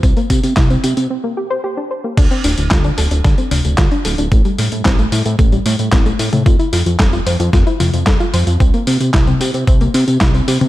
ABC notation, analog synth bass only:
X:1
M:4/4
L:1/16
Q:1/4=112
K:Dm
V:1 name="Analog synth bass" clef=bass
C,, z C, C, C,,2 C, C, z8 | D,, z D,,, D,,, D,,2 D,,, D,,, D,, z D,,, D,,, D,, z D,,, D,,, | A,,, z A,, A,, A,,,2 A,, A,, A,,,2 A,, A,, A,,,2 A,, A,, | F,,, z F,, F,, F,,,2 F,, F,, F,,, z F,, F,, F,,, z F,, F,, |
C,, z C, C, C,,2 C, C, C,,2 C, C, C,,2 C, C, |]